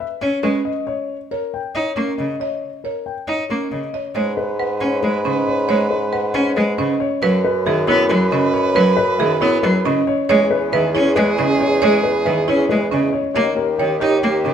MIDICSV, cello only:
0, 0, Header, 1, 2, 480
1, 0, Start_track
1, 0, Key_signature, 5, "minor"
1, 0, Tempo, 437956
1, 1197, Time_signature, 7, 3, 24, 8
1, 15933, End_track
2, 0, Start_track
2, 0, Title_t, "Cello"
2, 0, Program_c, 0, 42
2, 237, Note_on_c, 0, 61, 81
2, 417, Note_off_c, 0, 61, 0
2, 472, Note_on_c, 0, 56, 64
2, 654, Note_off_c, 0, 56, 0
2, 1918, Note_on_c, 0, 63, 71
2, 2098, Note_off_c, 0, 63, 0
2, 2149, Note_on_c, 0, 58, 62
2, 2332, Note_off_c, 0, 58, 0
2, 2397, Note_on_c, 0, 49, 57
2, 2577, Note_off_c, 0, 49, 0
2, 3592, Note_on_c, 0, 63, 69
2, 3774, Note_off_c, 0, 63, 0
2, 3840, Note_on_c, 0, 58, 56
2, 4019, Note_off_c, 0, 58, 0
2, 4074, Note_on_c, 0, 49, 52
2, 4255, Note_off_c, 0, 49, 0
2, 4547, Note_on_c, 0, 56, 68
2, 4731, Note_off_c, 0, 56, 0
2, 5268, Note_on_c, 0, 61, 73
2, 5452, Note_off_c, 0, 61, 0
2, 5513, Note_on_c, 0, 56, 64
2, 5694, Note_off_c, 0, 56, 0
2, 5754, Note_on_c, 0, 49, 60
2, 5936, Note_off_c, 0, 49, 0
2, 6239, Note_on_c, 0, 56, 77
2, 6418, Note_off_c, 0, 56, 0
2, 6954, Note_on_c, 0, 61, 87
2, 7135, Note_off_c, 0, 61, 0
2, 7197, Note_on_c, 0, 56, 73
2, 7377, Note_off_c, 0, 56, 0
2, 7437, Note_on_c, 0, 49, 70
2, 7617, Note_off_c, 0, 49, 0
2, 7915, Note_on_c, 0, 54, 81
2, 8096, Note_off_c, 0, 54, 0
2, 8398, Note_on_c, 0, 51, 71
2, 8578, Note_off_c, 0, 51, 0
2, 8633, Note_on_c, 0, 59, 86
2, 8815, Note_off_c, 0, 59, 0
2, 8875, Note_on_c, 0, 54, 73
2, 9056, Note_off_c, 0, 54, 0
2, 9117, Note_on_c, 0, 49, 72
2, 9297, Note_off_c, 0, 49, 0
2, 9596, Note_on_c, 0, 54, 88
2, 9777, Note_off_c, 0, 54, 0
2, 10076, Note_on_c, 0, 51, 69
2, 10257, Note_off_c, 0, 51, 0
2, 10316, Note_on_c, 0, 59, 92
2, 10497, Note_off_c, 0, 59, 0
2, 10558, Note_on_c, 0, 54, 82
2, 10738, Note_off_c, 0, 54, 0
2, 10799, Note_on_c, 0, 49, 72
2, 10979, Note_off_c, 0, 49, 0
2, 11282, Note_on_c, 0, 56, 91
2, 11460, Note_off_c, 0, 56, 0
2, 11758, Note_on_c, 0, 51, 74
2, 11938, Note_off_c, 0, 51, 0
2, 12001, Note_on_c, 0, 61, 98
2, 12180, Note_off_c, 0, 61, 0
2, 12232, Note_on_c, 0, 56, 84
2, 12414, Note_off_c, 0, 56, 0
2, 12475, Note_on_c, 0, 49, 80
2, 12656, Note_off_c, 0, 49, 0
2, 12959, Note_on_c, 0, 56, 89
2, 13138, Note_off_c, 0, 56, 0
2, 13439, Note_on_c, 0, 51, 75
2, 13618, Note_off_c, 0, 51, 0
2, 13681, Note_on_c, 0, 61, 85
2, 13859, Note_off_c, 0, 61, 0
2, 13930, Note_on_c, 0, 56, 74
2, 14105, Note_off_c, 0, 56, 0
2, 14163, Note_on_c, 0, 49, 73
2, 14341, Note_off_c, 0, 49, 0
2, 14641, Note_on_c, 0, 58, 82
2, 14819, Note_off_c, 0, 58, 0
2, 15120, Note_on_c, 0, 51, 61
2, 15299, Note_off_c, 0, 51, 0
2, 15358, Note_on_c, 0, 63, 85
2, 15538, Note_off_c, 0, 63, 0
2, 15601, Note_on_c, 0, 58, 67
2, 15779, Note_off_c, 0, 58, 0
2, 15843, Note_on_c, 0, 49, 60
2, 15933, Note_off_c, 0, 49, 0
2, 15933, End_track
0, 0, End_of_file